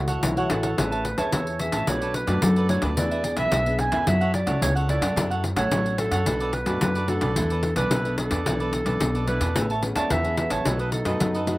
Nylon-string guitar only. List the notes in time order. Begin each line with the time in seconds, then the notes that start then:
Already playing: A3 E4 F#4 C#5
0.23 E3
0.37 E4 F#4 C#5
0.78 A3 C#4 G#4 B4
1.17 C#4 G#4 B4
1.33 E3
1.59 C#4 G#4 B4
1.87 B2 A3 D4 F#4
2.27 A3 D4 F#4
2.42 F#3
2.69 A3 D4 F#4
2.97 E3 B3 D4 G#4
3.24 B3 D4 G#4
3.52 B2
3.66 B3 D4 G#4
3.92 C#4 E4 A4
4.07 F#3
4.47 C#4 E4 A4
4.62 C#3
4.89 C#4 E4 A4
5.17 F#3 C#4 E4 A4
5.56 C#4 E4 A4
5.72 F#3
5.98 C#4 E4 A4
6.26 B2 A3 D4 F#4
6.66 A3 D4 F#4
6.81 F#3
7.08 A3 D4 F#4
7.36 E3 B3 D4 A4
7.63 B3 D4 A4
7.91 B2
8.05 B3 D4 A4
8.46 E3 B3 D4 A4
8.86 B3 D4 A4
9.01 B2
9.27 B3 D4 A4
9.56 A3 C#4 G#4 B4
9.83 C#4 G#4 B4
10.10 E3
10.24 C#4 G#4 B4
10.65 B2 A3 D#4 F#4
11.05 A3 D#4 F#4
11.20 F#3
11.46 A3 D#4 F#4